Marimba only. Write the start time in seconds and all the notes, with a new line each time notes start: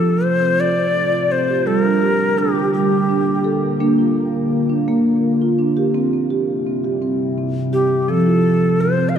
Already playing: F3
0.41 C4
0.59 F4
1.12 F4
1.30 C4
1.48 G4
1.66 G3
1.84 D4
2.02 G4
2.38 D4
2.55 G4
2.74 G3
3.09 D4
3.44 A4
3.80 A#3 D4
3.98 F4
4.70 D4
4.88 A#3
5.42 F4
5.59 D4
5.77 G4
5.94 C4
6.13 C4
6.30 G4
6.66 C4
6.84 G4
7.02 C4
7.38 C4
7.73 G4
8.08 F3 C4
8.26 F4
8.98 C4